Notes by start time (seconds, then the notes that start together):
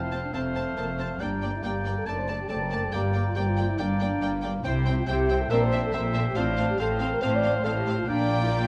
Already playing: F1 F2 C4 C5 F5 A5
0.03 E4
0.12 C4 C5 A5
0.23 D4
0.33 F1 F2 A3 C4 C5 F5 A5
0.55 C4 C5 A5
0.77 F1 F2 A#3 C4 C5 A5
0.98 C4 C5 A5
1.20 G1 G2 G3 A#3 D4 D5 G5 A#5
1.42 A#3 D5 G5
1.54 E4
1.63 G1 G2 A#3 G4 D5 G5 A#5
1.84 A#3 D5 G5
1.96 A4
2.05 F#1 F#2 A3 D4 A#4 D5 A5
2.18 C5
2.27 A3 D5 A5
2.39 G4
2.49 F#1 F#2 A3 C4 A4 D5 A5
2.61 A#4
2.70 A3 D5 A5
2.83 A4
2.93 G1 G2 A#3 G4 D5 G5 A#5
3.14 A#3 D5 G5
3.27 F4
3.35 G1 G2 A#3 C4 G4 D5 G5 A#5
3.48 F4
3.57 A#3 D5 G5
3.69 E4
3.78 G1 G2 A#3 D4 D5 G5 A#5
4.00 A#3 D5 G5
4.21 G1 G2 A#3 D5 G5
4.43 A#3 D5 G5
4.64 C2 C3 C4 E4 C5 G5
4.86 C4 C5 G5
4.98 F4
5.07 C2 C3 C4 E4 G4 C5 G5
5.29 C4 C5 G5
5.41 A4
5.50 A#1 A#2 C4 D4 A#4 C5 E5 G5
5.62 C5
5.72 C4 C5 E5
5.84 A4
5.93 A#1 A#2 C4 A#4 C5 E5 G5
6.06 A4
6.14 C4 C5 E5
6.28 G4
6.35 A1 A2 C4 D4 F4 C5 F5 A5
6.57 C4 C5 F5
6.69 G4
6.78 A1 A2 C4 A4 C5 F5 A5
7.00 C4 C5 F5
7.13 A#4
7.22 A1 A2 C4 C5 F5 A5
7.35 D5
7.44 C4 C5 F5
7.56 C5
7.64 A1 A2 C4 A4 C5 F5 A5
7.76 G4
7.87 C4 C5 F5
7.99 F4
8.08 A#1 A#2 A#3 D4 D5 G5 A#5
8.42 E4
8.51 F4